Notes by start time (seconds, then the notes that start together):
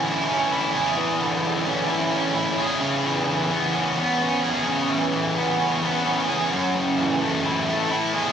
Already playing: D3 E3 C#4
0.05 E4
0.28 C#4
0.51 E4
0.75 G#4
0.97 E3
1.20 D3
1.43 D3
1.65 C#4
1.88 E4
2.12 C#4
2.34 E4
2.58 G#4
2.81 C#3
3.05 E3
3.29 E3
3.51 B3
3.74 C#4
3.97 B3
4.21 C#4
4.43 G#4
4.67 C#3
4.89 E3
5.13 E3
5.36 B3
5.59 C#4
5.82 B3
6.05 C#4
6.28 G#4
6.52 F#2
6.75 C#3
6.98 E3
7.21 A3
7.44 E4
7.67 A3
7.91 E4
8.13 G#4